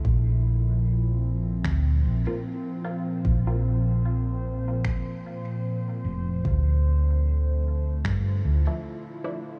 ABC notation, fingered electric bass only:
X:1
M:4/4
L:1/8
Q:"Swing 16ths" 1/4=75
K:Bblyd
V:1 name="Fingered electric bass" clef=bass
B,,,4 D,, B,,, z2 | B,,,4 z3 F,,, | D,,4 G,, D,, z2 |]